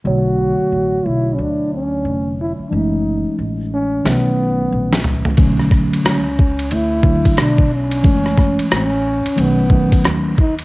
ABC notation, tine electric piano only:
X:1
M:4/4
L:1/8
Q:"Swing 16ths" 1/4=90
K:Bdor
V:1 name="Tine electric piano" clef=bass
[D,F,A,c]8 | [E,G,A,C]4 [^D,F,A,C]4 | [D,F,A,C]2 z3 [D,F,A,D]2 z | [E,G,A,C]2 z2 [^D,F,A,C] [D,F,A,C]2 z |]